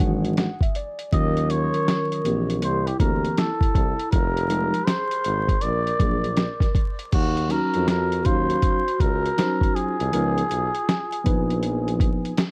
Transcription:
Already playing: D#3 F#3
0.00 G#1 E3 G#3 D4 F#4 F#5, kick, closed hi-hat
0.25 closed hi-hat
0.37 F#5, snare, closed hi-hat
0.61 E5, kick, closed hi-hat
0.75 D5, closed hi-hat
0.99 closed hi-hat
1.13 D#2 D#3 F#3 C#4 F4 A#4 D#5, kick, closed hi-hat
1.37 closed hi-hat
1.50 A#4 C#5, closed hi-hat
1.74 closed hi-hat
1.88 snare, closed hi-hat
2.12 closed hi-hat
2.25 A#1 E3 A#3 C4 G4, closed hi-hat
2.50 closed hi-hat
2.62 C2 G4 C5, closed hi-hat
2.87 E4 G4, closed hi-hat
3.00 D2 E3 A#3 C4 G4 A#4, kick, closed hi-hat
3.25 closed hi-hat
3.37 E4 A4, snare, closed hi-hat
3.61 kick, closed hi-hat
3.75 C2, kick, closed hi-hat
3.99 closed hi-hat
4.11 F1 G4 A#4, kick, closed hi-hat
4.37 closed hi-hat
4.49 F3 G#3 D#4 G4, closed hi-hat
4.74 closed hi-hat
4.86 G#4 C5, snare, closed hi-hat
5.11 closed hi-hat
5.24 G#1, closed hi-hat
5.48 kick, closed hi-hat
5.61 A#1 A#4 D5, closed hi-hat
5.87 closed hi-hat
5.99 A#1 F#3 A#3 D4 G#4, kick, closed hi-hat
6.24 closed hi-hat
6.37 snare, closed hi-hat
6.60 kick, snare, closed hi-hat
6.75 kick, closed hi-hat
6.99 closed hi-hat
7.12 D#2 D#4 F#4, kick, closed hi-hat, crash
7.37 closed hi-hat
7.49 F#3 C#4 D#4 F#4 A#4, closed hi-hat
7.74 F2, closed hi-hat
7.87 F#4 A#4, snare, closed hi-hat
8.12 closed hi-hat
8.25 D#2 F#3 C#4 D#4 F#4 C5 F5, kick, closed hi-hat
8.50 closed hi-hat
8.62 kick, closed hi-hat
8.88 closed hi-hat
8.99 C#2 F#4 A#4, kick, closed hi-hat
9.26 closed hi-hat
9.37 F#3 C#4 D#4 C5, snare, closed hi-hat
9.61 kick, closed hi-hat
9.75 F4 G#4, closed hi-hat
10.00 C2, closed hi-hat
10.12 C#2 F3 B3 D#4 A#4, closed hi-hat
10.38 closed hi-hat
10.51 B1, closed hi-hat
10.75 closed hi-hat
10.89 snare, closed hi-hat
11.12 closed hi-hat
11.24 A#1 F3 B3 D#4 B4, kick, closed hi-hat
11.50 closed hi-hat
11.63 closed hi-hat
11.88 closed hi-hat
12.00 kick, closed hi-hat
12.25 closed hi-hat
12.37 snare, closed hi-hat

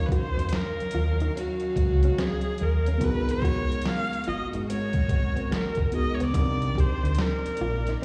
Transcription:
Already playing: D#3 F#3 C#4 D#4 F#4 A#4 F5
0.06 B4, kick
0.12 F#4 C5, closed hi-hat
0.37 F2, closed hi-hat
0.49 snare, closed hi-hat
0.54 A#4, muted nylon-string guitar stroke
0.79 muted fingered electric bass stroke, closed hi-hat
0.91 D#2 F4, closed hi-hat
1.20 D#4, closed hi-hat
1.37 C#4 F#4, closed hi-hat
1.60 closed hi-hat
1.76 C#2, muted nylon-string guitar stroke, kick, closed hi-hat
2.03 C#4, closed hi-hat
2.18 C4 G#4, snare, closed hi-hat
2.41 closed hi-hat
2.58 D#2, muted nylon-string guitar stroke, closed hi-hat
2.62 A#4
2.86 C#4, closed hi-hat
2.98 G#1 B2 G#3 B3 D#4 F#4 A#4, kick, closed hi-hat
3.03 G#4 A#4 B4
3.29 C#5, closed hi-hat
3.42 F#4, kick, closed hi-hat
3.72 closed hi-hat
3.82 snare, closed hi-hat
3.87 F5, muted nylon-string guitar stroke
4.13 closed hi-hat
4.24 G#1 F4, closed hi-hat
4.28 D#5
4.53 G#2 D#4, closed hi-hat
4.70 C4 C#5, closed hi-hat
4.93 kick, closed hi-hat
5.09 G#1, muted nylon-string guitar stroke, kick, closed hi-hat
5.36 C4, closed hi-hat
5.51 A#3 A#4, muted fingered electric bass stroke, snare, closed hi-hat
5.75 G#1, kick, closed hi-hat
5.92 B3 D#4 F#4 G#4 A#4, muted nylon-string guitar stroke, closed hi-hat
5.96 D#5
6.14 C#5
6.20 C#2 B3 D5, closed hi-hat
6.31 C2 D#3 C4 D4 D#4 D5, kick, closed hi-hat
6.36 C3 G4 A#4
6.62 closed hi-hat
6.75 G4, kick, closed hi-hat
6.80 C5
7.03 D2, closed hi-hat
7.15 snare, closed hi-hat
7.20 A#4, muted nylon-string guitar stroke
7.45 muted fingered electric bass stroke, closed hi-hat
7.57 A#1, closed hi-hat
7.61 F4
7.87 D#4, snare, closed hi-hat

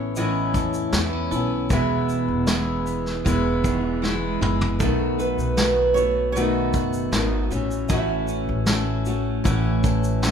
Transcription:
Already playing: A1 E3 B3 C#4 E4 A4 C#5
0.16 A2 E3 B3 C#4 E4 D#5, shaker
0.54 E2 A4, kick, shaker
0.74 shaker
0.92 E2 E3 B3 C#4 E4, snare, shaker
1.13 C#4
1.31 B1 B3 C#4 E4 A4, shaker
1.70 E1 E2 B2 E3 G#3 B3 E4 G#4 E5, kick, shaker
2.09 E4, shaker
2.28 E1
2.47 E3 G#3 B3 E4 G#4, snare, shaker
2.87 B3, shaker
3.06 snare
3.24 E1 E2 B2 E3 G#3 B3 E4, kick, shaker
3.64 D#3 G#4, kick, shaker
3.84 E3
4.02 E3 F#3 G#3 B3 E4, snare
4.22 G#3
4.41 F#1 E3 G#3 B3 E4 G#4, mid tom
4.61 floor tom
4.80 B1 B2 D#3 F#3 A3 B3 F#4 A4, kick, shaker
5.19 D#4 B4, shaker
5.38 B1, shaker
5.57 D#3 A3 B3 F#4, snare, shaker
5.94 A3 B3 F#4 C#5, shaker
5.99 A3
6.32 B2 D#3 D#4 D#5, shaker
6.36 A3 B3 F#4
6.74 F#1 F#4, kick, shaker
6.93 shaker
7.12 G#1 D#3 A3 B3 D#4, snare, shaker
7.16 F#4
7.50 A1 E3 A3 C#4 F#4, shaker
7.71 shaker
7.89 A1 A2 E3 A3 C#4 F#4 A4 E5, kick, shaker
8.28 C#4, shaker
8.49 A1
8.66 E3 A3 C#4 F#4 A4, snare, shaker
9.06 A3 C#4 F#4, shaker
9.44 A1 A2 E3 A3 C#4 F#4, kick, shaker
9.84 A4, kick, shaker
10.04 shaker
10.22 E3 A3 C#4, snare, shaker
10.26 F#4

